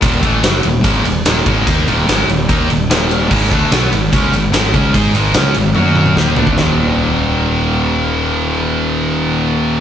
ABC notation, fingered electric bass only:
X:1
M:4/4
L:1/8
Q:1/4=147
K:Ab
V:1 name="Fingered electric bass" clef=bass
E,,, =A,,, _G,,, E,,, _A,,, E,,, E,,, A,,, | E,, E,,, A,,, E,,, E,, E,,, E,,,2 | A,,, =D,, _C,, A,,, _D,, A,,, A,,, D,, | A,, A,,, D,, A,,, _G,,2 E,, =D,, |
E,,,8- | E,,,8 |]